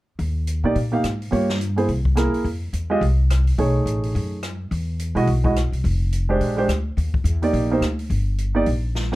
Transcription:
0.19 upright bass D#2, kick, open hi-hat
0.47 closed hi-hat
0.64 upright bass A#2, grand piano A#3 D#4 G4 D5
0.75 upright bass A#2, kick, open hi-hat
0.92 grand piano A#3 D#4 G4 F5
1.04 upright bass G#2, cross-stick, closed hi-hat
1.22 open hi-hat
1.31 upright bass G2, grand piano A#3 F4 G4 C#5, kick, open hi-hat
1.49 snare
1.61 closed hi-hat
1.76 grand piano A#3 E4 G#4 C5, open hi-hat
1.89 upright bass C2, kick, open hi-hat
2.05 kick
2.15 grand piano A#3 E4 G#4 A#4, cross-stick, closed hi-hat
2.34 muted upright bass stroke, open hi-hat
2.44 upright bass F2, kick, open hi-hat
2.73 upright bass E2, closed hi-hat
2.90 grand piano G#3 F4 G4 D#5
3.01 upright bass C2, kick, open hi-hat
3.30 cross-stick, closed hi-hat
3.47 open hi-hat
3.58 upright bass B1, grand piano A3 D#4 G#4 C#5, kick, open hi-hat
3.86 upright bass A1, closed hi-hat
4.03 open hi-hat
4.15 upright bass F#2, kick, open hi-hat
4.43 cross-stick, closed hi-hat
4.71 upright bass E2, kick, open hi-hat
4.99 closed hi-hat
5.15 upright bass B2, grand piano G#3 E4 F#4 D#5, open hi-hat
5.27 upright bass B1, kick, open hi-hat
5.44 grand piano G#3 E4 F#4 D#5, kick
5.56 cross-stick, closed hi-hat
5.72 upright bass C2, open hi-hat
5.84 upright bass F1, kick, open hi-hat
6.13 closed hi-hat
6.29 grand piano G#3 D4 G4 C5
6.41 upright bass A#1, kick, open hi-hat
6.57 grand piano G#3 D4 G4 C5
6.68 upright bass D2, cross-stick, closed hi-hat
6.97 upright bass D#2, kick, open hi-hat
7.14 kick
7.24 upright bass E2, closed hi-hat
7.42 grand piano A#3 D#4 G4 D5, open hi-hat
7.53 upright bass A#1, kick, open hi-hat
7.71 grand piano A#3 D#4 G4 C5
7.80 upright bass D2, cross-stick, closed hi-hat
7.99 open hi-hat
8.10 upright bass G1, kick, open hi-hat
8.38 closed hi-hat
8.55 grand piano A#3 D#4 G4 D5
8.66 upright bass A#1, kick, open hi-hat
8.95 snare
9.12 grand piano A#3

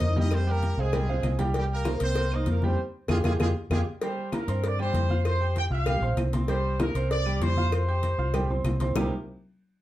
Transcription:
Already playing: grand piano A#3 A#4 C5, horn section D#4 D#5
0.00 fingered electric bass F2, cowbell, high conga
0.16 grand piano G3 G4 G5, horn section D#4 D#5, high conga
0.31 horn section C4 C5, cowbell, claves
0.47 grand piano G3 G4 G5, horn section A#3 A#4, high conga
0.62 cowbell, high conga
0.77 fingered electric bass C2, horn section G#3 G#4, grand piano C4 C5 F5
0.93 grand piano G3 G4 G5, cowbell, high conga, low conga, claves
1.09 grand piano C4 C5 F5, high conga, low conga
1.23 fingered electric bass C2, cowbell, high conga, claves
1.39 grand piano G3 G4 G5, cowbell, high conga
1.54 grand piano G3 G4 G5, horn section G3 G4, cowbell
1.69 horn section A#3 A#4, high conga
1.85 grand piano A#3 A#4 C5, cowbell, high conga, claves
2.00 fingered electric bass C2, horn section C4 C5, cowbell, high conga
2.15 grand piano A#3 A#4 C5, cowbell, high conga
2.31 grand piano A#3 A#4 C5, horn section D#4 D#5, high conga, claves
2.46 fingered electric bass F2, horn section A#3 A#4, cowbell, high conga
2.62 grand piano G3 G4 G5, horn section C4 C5, high conga
3.08 fingered electric bass F2, horn section G#3 F4 G4 G#4, grand piano F4 G4 G#4, cowbell, high conga, claves
3.24 fingered electric bass F2, horn section G#3 F4 G4 G#4, grand piano F4 G4 G#4, cowbell, high conga, claves
3.39 fingered electric bass F2, horn section G#3 F4 G4 G#4, grand piano F4 G4 G#4, cowbell, high conga, claves
3.70 fingered electric bass F2, horn section G#3 F4 G4 G#4, grand piano F4 G4 G#4, cowbell, high conga, claves
4.01 grand piano G3 G4 G5, trumpet section C5, cowbell, high conga
4.17 high conga
4.32 grand piano A#3 A#4 A#5, trumpet section A#4, cowbell, high conga, claves
4.48 fingered electric bass G2, grand piano C4 C5 C6, cowbell, high conga
4.63 trumpet section D5, cowbell, high conga
4.78 grand piano G3 G4 G5, trumpet section C5, high conga, claves
4.93 fingered electric bass F2, cowbell, high conga
5.10 grand piano F4 F5 F6, high conga
5.25 trumpet section C5, cowbell, high conga, claves
5.41 grand piano G4 G5 G6, high conga
5.56 trumpet section G5, cowbell, high conga
5.70 fingered electric bass C2, grand piano F4 F5 F6, trumpet section F5, high conga
5.86 grand piano G3 G4 G5, cowbell, high conga, low conga, claves
6.01 fingered electric bass A#1, grand piano C4 C5 C6, high conga, low conga
6.17 fingered electric bass C2, cowbell, high conga, claves
6.33 grand piano C4 C5 C6, cowbell, high conga
6.48 grand piano G3 G4 G5, trumpet section C5, cowbell, high conga
6.64 high conga
6.80 grand piano A#3 A#4 A#5, trumpet section A#4, cowbell, high conga, claves
6.95 fingered electric bass C2, grand piano C4 C5 C6, cowbell
7.11 trumpet section D5, cowbell, high conga
7.26 grand piano G3 G4 G5, high conga, claves
7.40 fingered electric bass F2, trumpet section C5, cowbell, high conga
7.56 grand piano F4 F5 F6, high conga
7.72 trumpet section C5, cowbell, high conga, claves
7.88 grand piano G4 G5 G6, high conga
8.03 cowbell, high conga
8.18 fingered electric bass C2, grand piano F4 F5 F6, high conga
8.34 grand piano G3 G4 G5, cowbell, high conga, low conga, claves
8.49 grand piano C4 C5 C6, high conga, low conga
8.64 fingered electric bass C2, cowbell, high conga, claves
8.80 grand piano C4 C5 C6, cowbell, high conga
8.95 fingered electric bass C2, grand piano C3 G3 A#3 C4 D#4 G4, low bongo, low conga, claves

